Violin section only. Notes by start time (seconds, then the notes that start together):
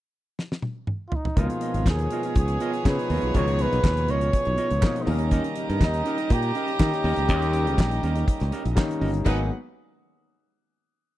1.37 B3 G#4 C#5
5.06 G4 D#5 A#5
9.26 D#4 B4 F#5